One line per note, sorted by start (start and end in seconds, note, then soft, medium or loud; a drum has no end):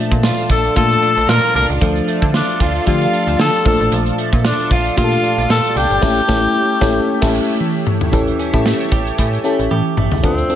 0.00 0.38 A#2 medium
0.00 1.81 F3 medium
0.00 0.37 A3 medium
0.00 2.08 A3 medium
0.00 0.38 D4 medium
0.00 0.38 F4 medium
0.00 5.99 F4 medium
0.00 0.38 A4 medium
0.00 1.79 A4 medium
0.00 5.99 D5 medium
0.00 8.09 A5 medium
0.11 0.31 A#2 loud
0.11 kick medium
0.11 closed hi-hat soft
0.23 0.76 F4 medium
0.23 0.49 F4 medium
0.23 0.48 F5 medium
0.23 snare loud
0.23 tambourine medium
0.38 closed hi-hat medium
0.50 0.69 A#1 loud
0.50 1.02 D4 medium
0.50 0.75 A4 medium
0.50 0.74 A5 medium
0.50 kick medium
0.50 closed hi-hat medium
0.64 closed hi-hat medium
0.76 1.43 A#2 medium
0.76 0.96 A#2 loud
0.76 1.43 A3 medium
0.76 1.43 D4 medium
0.76 1.28 F4 medium
0.76 1.43 F4 medium
0.76 1.43 A4 medium
0.76 1.31 A4 loud
0.76 1.25 A5 medium
0.76 kick loud
0.76 closed hi-hat loud
0.91 closed hi-hat medium
1.02 1.55 D4 medium
1.02 closed hi-hat medium
1.17 1.26 A#1 medium
1.17 closed hi-hat medium
1.28 1.40 A#2 loud
1.28 2.34 F4 medium
1.28 1.56 A#4 loud
1.28 1.54 A#5 medium
1.28 snare loud
1.28 tambourine medium
1.43 closed hi-hat soft
1.55 1.66 C2 medium
1.55 2.60 D4 medium
1.55 1.68 A#4 loud
1.55 1.67 A#5 medium
1.55 open hi-hat medium
1.70 1.78 C#2 medium
1.70 closed hi-hat soft
1.81 2.01 D2 loud
1.81 2.48 F3 medium
1.81 3.65 F3 medium
1.81 2.48 A3 medium
1.81 2.48 D4 medium
1.81 2.48 F4 medium
1.81 3.64 A4 medium
1.81 2.49 A4 medium
1.81 kick loud
1.81 closed hi-hat medium
1.96 closed hi-hat medium
2.08 4.18 A3 medium
2.08 closed hi-hat medium
2.22 2.42 D3 loud
2.22 kick medium
2.22 closed hi-hat soft
2.34 2.59 D4 medium
2.34 2.86 F4 medium
2.34 2.59 D5 medium
2.34 snare loud
2.34 tambourine medium
2.49 closed hi-hat medium
2.60 2.80 D2 loud
2.60 3.13 D4 medium
2.60 2.85 F4 medium
2.60 2.85 F5 medium
2.60 kick loud
2.60 closed hi-hat medium
2.75 closed hi-hat medium
2.86 3.07 D3 loud
2.86 3.53 F3 medium
2.86 3.54 A3 medium
2.86 3.54 D4 medium
2.86 3.39 F4 medium
2.86 3.54 F4 medium
2.86 3.36 F4 loud
2.86 3.54 G4 medium
2.86 3.36 F5 medium
2.86 kick loud
2.86 closed hi-hat loud
3.01 closed hi-hat medium
3.13 4.71 D4 medium
3.13 closed hi-hat medium
3.27 3.36 D2 loud
3.27 closed hi-hat medium
3.39 3.50 D3 loud
3.39 4.44 F4 medium
3.39 3.65 A4 loud
3.39 3.64 A5 medium
3.39 snare loud
3.39 tambourine medium
3.54 closed hi-hat soft
3.65 3.76 A#1 loud
3.65 4.50 A#2 medium
3.65 3.91 F3 medium
3.65 4.50 A3 medium
3.65 4.50 D4 medium
3.65 4.50 F4 medium
3.65 6.00 A4 medium
3.65 4.51 A4 medium
3.65 3.91 A4 medium
3.65 3.90 A5 medium
3.65 kick loud
3.65 open hi-hat medium
3.80 3.89 A1 medium
3.80 closed hi-hat soft
3.92 4.12 A#1 loud
3.92 6.02 F3 medium
3.92 closed hi-hat medium
4.06 closed hi-hat medium
4.18 6.53 A3 medium
4.18 closed hi-hat medium
4.33 4.52 A#2 loud
4.33 kick medium
4.33 closed hi-hat soft
4.44 4.70 D4 medium
4.44 4.96 F4 medium
4.44 4.69 D5 medium
4.44 snare loud
4.44 tambourine medium
4.59 closed hi-hat medium
4.71 4.91 A#1 loud
4.71 5.22 D4 medium
4.71 4.96 F4 medium
4.71 4.95 F5 medium
4.71 kick loud
4.71 closed hi-hat medium
4.86 closed hi-hat medium
4.96 5.64 A#2 medium
4.96 5.17 A#2 loud
4.96 5.64 A3 medium
4.96 5.64 D4 medium
4.96 5.64 F4 medium
4.96 5.49 F4 medium
4.96 5.47 F4 loud
4.96 5.04 G4 medium
4.96 5.46 F5 medium
4.96 kick loud
4.96 closed hi-hat loud
5.04 5.68 A4 medium
5.12 closed hi-hat medium
5.24 5.75 D4 medium
5.24 closed hi-hat medium
5.38 5.47 A#1 medium
5.38 closed hi-hat medium
5.49 5.61 A#2 loud
5.49 6.03 F4 medium
5.49 5.79 A4 loud
5.49 5.74 A5 medium
5.49 snare loud
5.49 tambourine medium
5.64 closed hi-hat soft
5.76 5.87 C2 loud
5.76 6.03 D4 medium
5.76 7.61 G4 loud
5.76 6.02 G5 medium
5.76 open hi-hat medium
5.90 5.99 G1 medium
5.90 closed hi-hat medium
6.02 6.21 A1 loud
6.02 6.20 A3 loud
6.02 6.21 C#4 loud
6.02 6.21 E4 loud
6.02 8.11 G4 medium
6.02 6.21 G4 loud
6.02 6.21 A4 loud
6.02 8.11 C#5 medium
6.02 8.11 E5 medium
6.02 kick loud
6.02 snare loud
6.02 crash medium
6.28 6.47 A1 loud
6.28 6.47 A3 loud
6.28 6.47 C#4 loud
6.28 6.47 E4 loud
6.28 6.47 G4 loud
6.28 6.47 A4 loud
6.28 kick loud
6.28 snare loud
6.81 7.00 A1 loud
6.81 6.99 A3 loud
6.81 7.00 C#4 loud
6.81 7.00 E4 loud
6.81 7.00 G4 loud
6.81 7.00 A4 loud
6.81 kick loud
6.81 snare loud
7.21 7.40 A1 loud
7.21 7.39 A3 loud
7.21 7.39 C#4 loud
7.21 7.40 E4 loud
7.21 7.40 G4 loud
7.21 7.40 A4 loud
7.21 kick loud
7.21 snare loud
7.21 crash medium
7.60 high tom medium
7.87 mid tom loud
8.01 floor tom loud
8.12 8.33 A1 loud
8.12 10.23 E3 medium
8.12 8.37 C#4 medium
8.12 8.38 E4 medium
8.12 8.38 G4 medium
8.12 10.21 G4 medium
8.12 8.38 A4 medium
8.12 10.21 C#5 medium
8.12 10.21 E5 medium
8.12 10.22 A5 medium
8.12 kick loud
8.12 closed hi-hat medium
8.27 closed hi-hat medium
8.39 9.17 C#4 medium
8.39 closed hi-hat medium
8.53 8.73 A2 loud
8.53 9.10 C#4 medium
8.53 9.11 E4 medium
8.53 9.11 G4 medium
8.53 9.11 A4 medium
8.53 kick medium
8.53 closed hi-hat soft
8.66 9.44 A3 medium
8.66 snare loud
8.80 closed hi-hat soft
8.92 9.12 A1 medium
8.92 9.70 G4 medium
8.92 kick medium
8.92 closed hi-hat medium
9.07 closed hi-hat medium
9.18 9.38 A2 loud
9.18 10.29 C#4 medium
9.18 kick medium
9.18 closed hi-hat loud
9.33 closed hi-hat medium
9.44 9.97 A3 medium
9.44 9.94 C#4 medium
9.44 9.94 E4 medium
9.44 9.94 G4 medium
9.44 9.94 A4 medium
9.44 closed hi-hat medium
9.59 9.68 A1 medium
9.59 closed hi-hat medium
9.71 9.82 A2 medium
9.71 10.29 G4 medium
9.71 high tom medium
9.97 10.08 A1 medium
9.97 10.55 A3 medium
9.97 mid tom medium
10.12 10.21 C#2 medium
10.12 floor tom medium
10.23 10.43 D2 loud
10.23 10.55 F3 medium
10.23 10.41 C4 medium
10.23 10.55 C4 medium
10.23 10.41 D4 medium
10.23 10.41 F4 medium
10.23 10.41 A4 medium
10.23 kick loud
10.23 closed hi-hat medium
10.38 closed hi-hat medium
10.49 10.55 C4 medium
10.49 10.55 D4 medium
10.49 10.55 F4 medium
10.49 10.55 A4 medium
10.49 closed hi-hat medium